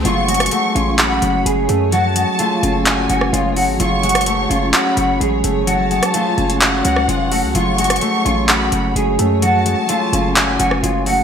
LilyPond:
<<
  \new Staff \with { instrumentName = "Violin section" } { \time 4/4 \key fis \minor \tempo 4 = 128 cis'''2 b''4 r4 | a''2 gis''4 r4 | cis'''2 b''4 r4 | a''2 fis''2 |
cis'''2 b''4 r4 | a''2 gis''4 r4 | }
  \new Staff \with { instrumentName = "Clean electric guitar" } { \time 4/4 \key fis \minor eis'8 fis'4 eis'8 fis'4 gis'4 | fis'4 eis'4. fis'8 eis'8 fis'8 | eis'8 fis'4 eis'8 fis'4 gis'4 | fis'4 eis'4. fis'8 eis'8 fis'8 |
eis'8 fis'4 eis'8 fis'4 gis'4 | fis'4 eis'4. fis'8 eis'8 fis'8 | }
  \new Staff \with { instrumentName = "Harp" } { \clef bass \time 4/4 \key fis \minor fis8 gis8 a8 cis'8 fis'8 fis8 gis8 a8 | fis8 gis8 a8 cis'8 fis'8 fis8 gis8 a8 | fis8 gis8 a8 cis'8 fis'8 fis8 gis8 a8 | fis8 gis8 a8 cis'8 fis'8 fis8 gis8 a8 |
fis8 gis8 a8 cis'8 fis'8 fis8 gis8 a8 | fis8 gis8 a8 cis'8 fis'8 fis8 gis8 a8 | }
  \new Staff \with { instrumentName = "String section" } { \clef bass \time 4/4 \key fis \minor << { cis''1~ | cis''1~ | cis''1~ | cis''1~ |
cis''1~ | cis''1 | } \\ { fis1~ | fis1~ | fis1~ | fis1 |
fis1~ | fis1 | } >> }
  \new Staff \with { instrumentName = "808-style bass" } { \clef bass \time 4/4 \key fis \minor fis,,4 r8 a,,4 fis,,8 fis,,8 fis,8~ | fis,8. r8. fis,,4 fis,,8 fis,,8. gis,,16 | fis,,4. fis,,8 r8 fis,,8 a,,8 fis,,8~ | fis,,8. r8. fis,,4 cis,8 eis,,8. cis,16 |
fis,,4 r8 a,,4 fis,,8 fis,,8 fis,8~ | fis,8. r8. fis,,4 fis,,8 fis,,8. gis,,16 | }
  \new DrumStaff \with { instrumentName = "Drums" } \drummode { \time 4/4 hh8 hh32 hh32 <hh ss>32 hh32 hh8 hh8 <hc hh>8 hh8 hh8 hh8 | hh8 hh8 hh8 hh8 <hc hh>8 hh16 ss16 hh8 hho8 | hh8 hh32 hh32 <hh ss>32 hh32 hh8 hh8 <hc hh>8 hh8 hh8 hh8 | hh8 hh16 <hh ss>16 hh8 hh16 hh16 <hc hh>8 hh16 ss16 hh8 hho8 |
hh8 hh32 hh32 <hh ss>32 hh32 hh8 hh8 <hc hh>8 hh8 hh8 hh8 | hh8 hh8 hh8 hh8 <hc hh>8 hh16 ss16 hh8 hho8 | }
>>